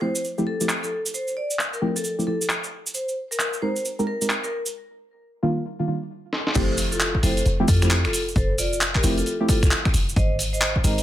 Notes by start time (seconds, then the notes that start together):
0.01 F3 A3 C4 E4 G4 C5
0.15 cabasa
0.24 cabasa
0.38 F3 A3 C4 E4 G4, cabasa
0.47 A4
0.61 F3 A3 C4 E4 G4, cabasa
0.69 clap, cabasa
0.83 A4, cabasa
1.06 cabasa
1.14 C5, cabasa
1.28 cabasa
1.37 D5
1.50 cabasa
1.59 clap, cabasa
1.73 A#4, cabasa
1.82 F3 A3 C4 E4 G4
1.96 A4, cabasa
2.04 cabasa
2.18 F3 A3 C4 E4 G4, cabasa
2.27 F3 A3 C4 E4 G4 A4
2.41 cabasa
2.49 clap, cabasa
2.64 cabasa
2.86 cabasa
2.94 C5, cabasa
3.08 cabasa
3.31 A#4, cabasa
3.39 clap, cabasa
3.53 cabasa
3.62 G#3 C4 D#4 G4 A#4 C5
3.76 cabasa
3.85 cabasa
3.99 G#3 C4 D#4 G4 A#4, cabasa
4.07 A#4
4.21 G#3 C4 D#4 G4 A#4, cabasa
4.29 clap, cabasa
4.44 A#4, cabasa
4.66 cabasa
5.43 D#3 G3 A#3 D4 F4
5.79 D#3 G3 A#3 D4 F4
5.88 D#3 G3 A#3 D4 F4
6.33 snare
6.47 snare
6.55 F1 F3 A3 C4 E4 G4 A4 C5, kick, closed hi-hat, crash, cabasa
6.78 open hi-hat, cabasa
6.92 F4 A4, cabasa
7.00 clap, cabasa
7.15 kick
7.23 F1 F3 A3 C4 E4 G4 A4 C5, open hi-hat, cabasa
7.37 closed hi-hat, cabasa
7.46 F1, closed hi-hat, cabasa
7.60 F3 A3 C4 E4 G4
7.68 F2 F4 A4, kick, open hi-hat, cabasa
7.82 F3 A3 C4 E4 G4, finger snap, closed hi-hat, cabasa
7.91 clap, cabasa
8.05 F1 F4 A4, finger snap, closed hi-hat
8.13 open hi-hat, cabasa
8.28 cabasa
8.36 F1 A4 C5, kick, closed hi-hat, cabasa
8.58 F4 D5, open hi-hat, cabasa
8.73 cabasa
8.81 clap, cabasa
8.95 G4 A#4, kick, clap
9.03 F1 F3 A3 C4 E4 G4, open hi-hat, cabasa
9.18 F4 A4, closed hi-hat, cabasa
9.26 closed hi-hat, cabasa
9.40 F3 A3 C4 E4 G4
9.49 F3 A3 C4 F4 G4 A4, kick, open hi-hat, cabasa
9.63 C2, finger snap, closed hi-hat, cabasa
9.71 clap, cabasa
9.85 finger snap, kick, closed hi-hat
9.94 F1, open hi-hat, cabasa
10.09 cabasa
10.16 G#1 C5 D#5, kick, closed hi-hat, cabasa
10.39 open hi-hat, cabasa
10.53 C5 D#5, cabasa
10.61 clap, cabasa
10.76 kick
10.84 G#1 G#3 C4 D#4 G4 A#4 C5 D#5, open hi-hat, cabasa
10.98 closed hi-hat, cabasa